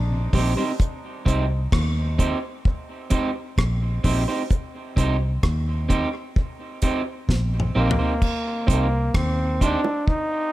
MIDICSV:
0, 0, Header, 1, 6, 480
1, 0, Start_track
1, 0, Key_signature, -3, "minor"
1, 0, Tempo, 927357
1, 413, Time_signature, 4, 2, 24, 8
1, 5446, End_track
2, 0, Start_track
2, 0, Title_t, "Clean electric guitar"
2, 0, Program_c, 0, 27
2, 173, Note_on_c, 0, 60, 81
2, 176, Note_on_c, 0, 63, 76
2, 179, Note_on_c, 0, 67, 91
2, 180, Note_on_c, 0, 72, 96
2, 268, Note_off_c, 0, 60, 0
2, 270, Note_off_c, 0, 63, 0
2, 271, Note_off_c, 0, 67, 0
2, 272, Note_off_c, 0, 72, 0
2, 296, Note_on_c, 0, 72, 73
2, 300, Note_on_c, 0, 63, 56
2, 300, Note_on_c, 0, 67, 58
2, 303, Note_on_c, 0, 60, 56
2, 367, Note_off_c, 0, 72, 0
2, 369, Note_off_c, 0, 63, 0
2, 369, Note_off_c, 0, 67, 0
2, 371, Note_off_c, 0, 60, 0
2, 649, Note_on_c, 0, 60, 83
2, 652, Note_on_c, 0, 63, 81
2, 656, Note_on_c, 0, 67, 81
2, 656, Note_on_c, 0, 72, 88
2, 746, Note_off_c, 0, 60, 0
2, 748, Note_off_c, 0, 63, 0
2, 749, Note_off_c, 0, 67, 0
2, 750, Note_off_c, 0, 72, 0
2, 1131, Note_on_c, 0, 60, 79
2, 1131, Note_on_c, 0, 63, 68
2, 1136, Note_on_c, 0, 67, 72
2, 1139, Note_on_c, 0, 72, 87
2, 1227, Note_off_c, 0, 60, 0
2, 1227, Note_off_c, 0, 63, 0
2, 1230, Note_off_c, 0, 67, 0
2, 1231, Note_off_c, 0, 72, 0
2, 1606, Note_on_c, 0, 60, 92
2, 1609, Note_on_c, 0, 63, 88
2, 1612, Note_on_c, 0, 67, 88
2, 1615, Note_on_c, 0, 72, 102
2, 1704, Note_off_c, 0, 60, 0
2, 1706, Note_off_c, 0, 63, 0
2, 1708, Note_off_c, 0, 67, 0
2, 1709, Note_off_c, 0, 72, 0
2, 2090, Note_on_c, 0, 60, 85
2, 2093, Note_on_c, 0, 63, 78
2, 2094, Note_on_c, 0, 67, 85
2, 2096, Note_on_c, 0, 72, 90
2, 2187, Note_off_c, 0, 60, 0
2, 2188, Note_off_c, 0, 63, 0
2, 2189, Note_off_c, 0, 67, 0
2, 2190, Note_off_c, 0, 72, 0
2, 2215, Note_on_c, 0, 72, 58
2, 2219, Note_on_c, 0, 67, 58
2, 2220, Note_on_c, 0, 60, 48
2, 2220, Note_on_c, 0, 63, 56
2, 2286, Note_off_c, 0, 72, 0
2, 2288, Note_off_c, 0, 67, 0
2, 2289, Note_off_c, 0, 60, 0
2, 2289, Note_off_c, 0, 63, 0
2, 2569, Note_on_c, 0, 60, 76
2, 2573, Note_on_c, 0, 63, 87
2, 2575, Note_on_c, 0, 67, 84
2, 2579, Note_on_c, 0, 72, 96
2, 2666, Note_off_c, 0, 60, 0
2, 2668, Note_off_c, 0, 63, 0
2, 2669, Note_off_c, 0, 67, 0
2, 2671, Note_off_c, 0, 72, 0
2, 3047, Note_on_c, 0, 60, 76
2, 3050, Note_on_c, 0, 63, 84
2, 3052, Note_on_c, 0, 67, 80
2, 3054, Note_on_c, 0, 72, 77
2, 3145, Note_off_c, 0, 60, 0
2, 3146, Note_off_c, 0, 63, 0
2, 3147, Note_off_c, 0, 67, 0
2, 3149, Note_off_c, 0, 72, 0
2, 3532, Note_on_c, 0, 60, 90
2, 3532, Note_on_c, 0, 63, 90
2, 3536, Note_on_c, 0, 67, 96
2, 3539, Note_on_c, 0, 72, 84
2, 3628, Note_off_c, 0, 60, 0
2, 3628, Note_off_c, 0, 63, 0
2, 3629, Note_off_c, 0, 67, 0
2, 3631, Note_off_c, 0, 72, 0
2, 4012, Note_on_c, 0, 60, 83
2, 4014, Note_on_c, 0, 63, 80
2, 4016, Note_on_c, 0, 67, 86
2, 4019, Note_on_c, 0, 72, 91
2, 4108, Note_off_c, 0, 60, 0
2, 4109, Note_off_c, 0, 63, 0
2, 4110, Note_off_c, 0, 67, 0
2, 4111, Note_off_c, 0, 72, 0
2, 4135, Note_on_c, 0, 72, 67
2, 4138, Note_on_c, 0, 67, 54
2, 4139, Note_on_c, 0, 63, 58
2, 4143, Note_on_c, 0, 60, 50
2, 4207, Note_off_c, 0, 72, 0
2, 4208, Note_off_c, 0, 67, 0
2, 4209, Note_off_c, 0, 63, 0
2, 4211, Note_off_c, 0, 60, 0
2, 4487, Note_on_c, 0, 60, 69
2, 4488, Note_on_c, 0, 63, 78
2, 4490, Note_on_c, 0, 67, 76
2, 4493, Note_on_c, 0, 72, 89
2, 4585, Note_off_c, 0, 60, 0
2, 4586, Note_off_c, 0, 63, 0
2, 4587, Note_off_c, 0, 67, 0
2, 4588, Note_off_c, 0, 72, 0
2, 4975, Note_on_c, 0, 60, 73
2, 4976, Note_on_c, 0, 63, 91
2, 4980, Note_on_c, 0, 67, 93
2, 4980, Note_on_c, 0, 72, 110
2, 5069, Note_off_c, 0, 60, 0
2, 5070, Note_off_c, 0, 63, 0
2, 5072, Note_off_c, 0, 67, 0
2, 5072, Note_off_c, 0, 72, 0
2, 5446, End_track
3, 0, Start_track
3, 0, Title_t, "Trombone"
3, 0, Program_c, 1, 57
3, 0, Note_on_c, 1, 62, 98
3, 154, Note_off_c, 1, 62, 0
3, 4017, Note_on_c, 1, 58, 98
3, 4475, Note_off_c, 1, 58, 0
3, 4499, Note_on_c, 1, 58, 94
3, 4735, Note_on_c, 1, 60, 99
3, 4743, Note_off_c, 1, 58, 0
3, 4974, Note_off_c, 1, 60, 0
3, 4984, Note_on_c, 1, 62, 98
3, 5219, Note_on_c, 1, 63, 110
3, 5227, Note_off_c, 1, 62, 0
3, 5446, Note_off_c, 1, 63, 0
3, 5446, End_track
4, 0, Start_track
4, 0, Title_t, "Tonewheel organ"
4, 0, Program_c, 2, 16
4, 52, Note_on_c, 2, 48, 56
4, 93, Note_off_c, 2, 48, 0
4, 169, Note_on_c, 2, 51, 73
4, 171, Note_on_c, 2, 55, 66
4, 173, Note_on_c, 2, 60, 77
4, 211, Note_off_c, 2, 51, 0
4, 213, Note_off_c, 2, 55, 0
4, 213, Note_off_c, 2, 60, 0
4, 289, Note_on_c, 2, 55, 58
4, 295, Note_on_c, 2, 60, 75
4, 331, Note_off_c, 2, 55, 0
4, 334, Note_off_c, 2, 60, 0
4, 5446, End_track
5, 0, Start_track
5, 0, Title_t, "Fingered electric bass"
5, 0, Program_c, 3, 33
5, 0, Note_on_c, 3, 34, 84
5, 140, Note_off_c, 3, 34, 0
5, 175, Note_on_c, 3, 34, 88
5, 280, Note_off_c, 3, 34, 0
5, 654, Note_on_c, 3, 36, 99
5, 861, Note_off_c, 3, 36, 0
5, 894, Note_on_c, 3, 39, 84
5, 1208, Note_off_c, 3, 39, 0
5, 1852, Note_on_c, 3, 34, 86
5, 2060, Note_off_c, 3, 34, 0
5, 2093, Note_on_c, 3, 34, 93
5, 2199, Note_off_c, 3, 34, 0
5, 2573, Note_on_c, 3, 36, 103
5, 2781, Note_off_c, 3, 36, 0
5, 2812, Note_on_c, 3, 39, 80
5, 3127, Note_off_c, 3, 39, 0
5, 3773, Note_on_c, 3, 34, 85
5, 3981, Note_off_c, 3, 34, 0
5, 4017, Note_on_c, 3, 34, 95
5, 4122, Note_off_c, 3, 34, 0
5, 4496, Note_on_c, 3, 36, 96
5, 4703, Note_off_c, 3, 36, 0
5, 4733, Note_on_c, 3, 39, 91
5, 5047, Note_off_c, 3, 39, 0
5, 5446, End_track
6, 0, Start_track
6, 0, Title_t, "Drums"
6, 172, Note_on_c, 9, 36, 81
6, 173, Note_on_c, 9, 46, 70
6, 223, Note_off_c, 9, 36, 0
6, 225, Note_off_c, 9, 46, 0
6, 413, Note_on_c, 9, 36, 106
6, 413, Note_on_c, 9, 44, 59
6, 464, Note_off_c, 9, 36, 0
6, 465, Note_off_c, 9, 44, 0
6, 653, Note_on_c, 9, 36, 91
6, 661, Note_on_c, 9, 42, 77
6, 705, Note_off_c, 9, 36, 0
6, 713, Note_off_c, 9, 42, 0
6, 892, Note_on_c, 9, 36, 114
6, 895, Note_on_c, 9, 37, 107
6, 944, Note_off_c, 9, 36, 0
6, 947, Note_off_c, 9, 37, 0
6, 1134, Note_on_c, 9, 36, 79
6, 1137, Note_on_c, 9, 42, 62
6, 1185, Note_off_c, 9, 36, 0
6, 1189, Note_off_c, 9, 42, 0
6, 1373, Note_on_c, 9, 36, 97
6, 1425, Note_off_c, 9, 36, 0
6, 1607, Note_on_c, 9, 42, 65
6, 1612, Note_on_c, 9, 36, 85
6, 1659, Note_off_c, 9, 42, 0
6, 1664, Note_off_c, 9, 36, 0
6, 1852, Note_on_c, 9, 36, 92
6, 1856, Note_on_c, 9, 37, 96
6, 1904, Note_off_c, 9, 36, 0
6, 1908, Note_off_c, 9, 37, 0
6, 2092, Note_on_c, 9, 36, 77
6, 2093, Note_on_c, 9, 46, 66
6, 2144, Note_off_c, 9, 36, 0
6, 2145, Note_off_c, 9, 46, 0
6, 2331, Note_on_c, 9, 44, 62
6, 2332, Note_on_c, 9, 36, 101
6, 2383, Note_off_c, 9, 44, 0
6, 2384, Note_off_c, 9, 36, 0
6, 2572, Note_on_c, 9, 36, 83
6, 2577, Note_on_c, 9, 42, 74
6, 2624, Note_off_c, 9, 36, 0
6, 2629, Note_off_c, 9, 42, 0
6, 2812, Note_on_c, 9, 36, 100
6, 2813, Note_on_c, 9, 37, 100
6, 2863, Note_off_c, 9, 36, 0
6, 2864, Note_off_c, 9, 37, 0
6, 3054, Note_on_c, 9, 36, 87
6, 3056, Note_on_c, 9, 42, 66
6, 3106, Note_off_c, 9, 36, 0
6, 3107, Note_off_c, 9, 42, 0
6, 3293, Note_on_c, 9, 36, 96
6, 3345, Note_off_c, 9, 36, 0
6, 3529, Note_on_c, 9, 42, 65
6, 3533, Note_on_c, 9, 36, 87
6, 3580, Note_off_c, 9, 42, 0
6, 3585, Note_off_c, 9, 36, 0
6, 3772, Note_on_c, 9, 36, 79
6, 3775, Note_on_c, 9, 38, 47
6, 3824, Note_off_c, 9, 36, 0
6, 3827, Note_off_c, 9, 38, 0
6, 3932, Note_on_c, 9, 45, 59
6, 3984, Note_off_c, 9, 45, 0
6, 4093, Note_on_c, 9, 43, 98
6, 4145, Note_off_c, 9, 43, 0
6, 4254, Note_on_c, 9, 36, 106
6, 4254, Note_on_c, 9, 49, 91
6, 4306, Note_off_c, 9, 36, 0
6, 4306, Note_off_c, 9, 49, 0
6, 4494, Note_on_c, 9, 36, 94
6, 4502, Note_on_c, 9, 42, 80
6, 4545, Note_off_c, 9, 36, 0
6, 4554, Note_off_c, 9, 42, 0
6, 4733, Note_on_c, 9, 36, 112
6, 4735, Note_on_c, 9, 37, 108
6, 4785, Note_off_c, 9, 36, 0
6, 4787, Note_off_c, 9, 37, 0
6, 4976, Note_on_c, 9, 36, 88
6, 4979, Note_on_c, 9, 42, 69
6, 5028, Note_off_c, 9, 36, 0
6, 5030, Note_off_c, 9, 42, 0
6, 5095, Note_on_c, 9, 60, 76
6, 5147, Note_off_c, 9, 60, 0
6, 5215, Note_on_c, 9, 36, 102
6, 5267, Note_off_c, 9, 36, 0
6, 5446, End_track
0, 0, End_of_file